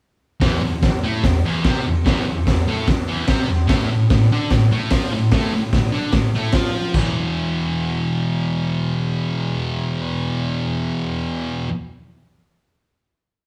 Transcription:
0.40 E2 E3, kick, snare, open hi-hat
0.63 E2
0.83 E2, kick, snare, open hi-hat
1.04 A2 A3
1.23 E2, kick, snare, open hi-hat
1.45 E2 E3
1.64 C3 C4, kick, snare, open hi-hat
1.86 E2
2.05 E2 E3, kick, snare, open hi-hat
2.26 E2
2.47 E2, kick, snare, open hi-hat
2.68 A2 A3
2.87 E2, kick, snare, open hi-hat
3.08 E2 E3
3.27 C3 C4, kick, snare, open hi-hat
3.48 E2
3.67 A2 A3, kick, snare, open hi-hat
3.90 A2
4.10 A2, kick, snare, open hi-hat
4.32 D3 D4
4.50 A2, kick, snare, open hi-hat
4.71 A2 A3
4.90 F3 F4, kick, snare, open hi-hat
5.12 A2
5.31 A2 A3, kick, snare, open hi-hat
5.54 A2
5.73 A2, kick, snare, open hi-hat
5.92 D3 D4
6.12 A2, kick, snare, open hi-hat
6.34 A2 A3
6.52 F3 F4, kick, snare, open hi-hat
6.94 E2 B2, kick, splash
6.99 E3

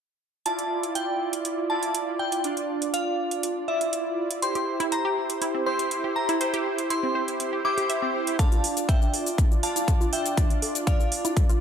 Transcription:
0.46 E4 F4 D5 A5, closed hi-hat
0.59 closed hi-hat
0.83 closed hi-hat
0.95 G5, closed hi-hat
1.33 closed hi-hat
1.45 closed hi-hat
1.70 E4 F4 D5 A5
1.83 closed hi-hat
1.95 closed hi-hat
2.19 G5
2.32 closed hi-hat
2.44 D4 F4 D5, closed hi-hat
2.57 closed hi-hat
2.82 closed hi-hat
2.94 F5, closed hi-hat
3.31 closed hi-hat
3.43 closed hi-hat
3.68 E4 F4 D5 E5
3.81 closed hi-hat
3.93 closed hi-hat
4.31 closed hi-hat
4.42 E4 G4 C5 C6, closed hi-hat
4.55 G4, closed hi-hat
4.80 E4, closed hi-hat
4.92 C5 A#5, closed hi-hat
5.05 G4
5.30 closed hi-hat
5.42 E4, closed hi-hat
5.54 C4
5.66 E4 G4 C5 C6
5.79 closed hi-hat
5.91 closed hi-hat
6.04 G4
6.16 A#5
6.29 E4, closed hi-hat
6.41 E4 G4 C5, closed hi-hat
6.54 G4, closed hi-hat
6.78 closed hi-hat
6.90 E4 C6, closed hi-hat
7.03 C4
7.15 C5
7.28 closed hi-hat
7.40 closed hi-hat
7.53 G4
7.65 E4 G4 C5 D6
7.78 G4, closed hi-hat
7.89 E5, closed hi-hat
8.02 C4
8.27 closed hi-hat
8.39 D4 F4 A4 F5 A5, kick, closed hi-hat, shaker
8.52 F4, closed hi-hat, shaker
8.64 open hi-hat
8.77 closed hi-hat, shaker
8.89 E4 E5 G5, kick, closed hi-hat, shaker
9.02 D4, shaker
9.13 A4, open hi-hat
9.26 open hi-hat, shaker
9.38 kick, closed hi-hat, shaker
9.51 F4, shaker
9.63 D4 F4 D5 F5 A5, open hi-hat
9.76 E4, closed hi-hat, shaker
9.88 A4, kick, closed hi-hat, shaker
10.01 F4, shaker
10.13 E5 G5, open hi-hat
10.26 closed hi-hat, shaker
10.37 D4 E4 F4 D5, kick, closed hi-hat, shaker
10.50 D4, closed hi-hat, shaker
10.62 A4, open hi-hat
10.75 closed hi-hat, shaker
10.87 D5 F5, kick, closed hi-hat, shaker
11.00 F4, shaker
11.12 open hi-hat
11.25 E4, closed hi-hat, shaker
11.37 A4, kick, closed hi-hat, shaker
11.49 F4, closed hi-hat, shaker

